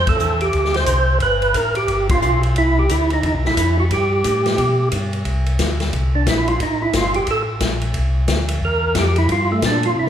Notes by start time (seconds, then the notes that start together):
0.07 F2 A4, kick, ride
0.19 E2, hi-hat pedal
0.41 G4, ride
0.53 D2, kick, ride
0.65 snare
0.74 C5, snare, ride
0.86 C2, kick, hi-hat pedal, ride
1.20 G1 B4, kick, ride
1.42 ride
1.54 A1 A#4, kick, hi-hat pedal, ride
1.75 G4, ride
1.88 G1, kick, ride
2.09 F4, kick, ride
2.22 B1, hi-hat pedal
2.43 ride
2.56 C2 E4, kick, ride
2.79 G4
2.89 D2 E4, kick, hi-hat pedal, ride
3.10 D#4, ride
3.23 E2 D#4, kick, ride
3.34 C2
3.45 A#1 E4, snare
3.57 F2, kick, hi-hat pedal, ride
3.80 F#4
3.91 G2 G4, kick, ride
4.24 A2, kick, hi-hat pedal, ride
4.46 snare, ride
4.58 B2, kick, ride
4.91 G2, kick, hi-hat pedal, ride
5.13 ride
5.25 C2, kick, ride
5.46 ride
5.59 D2, kick, snare, hi-hat pedal, ride
5.80 snare, ride
5.92 C2, kick, ride
6.15 D4
6.26 A#1 E4, kick, snare, hi-hat pedal, ride
6.48 F4, ride
6.60 A1 D#4, kick, ride
6.82 E4
6.93 G1 F4, kick, snare, hi-hat pedal, ride
7.14 G1 G4, ride
7.27 A1 A4, kick, ride
7.60 A#1, kick, snare, hi-hat pedal, ride
7.82 ride
7.94 C2, kick, ride
8.28 D2, kick, snare, hi-hat pedal, ride
8.48 ride
8.61 E2 A#4, kick
8.95 F2, kick, snare, hi-hat pedal, ride
8.99 G4
9.16 E4, ride
9.29 G2 F4, kick, ride
9.52 A3
9.62 A#2 D4, kick, snare, hi-hat pedal, ride
9.83 F4, ride
9.96 C3 E4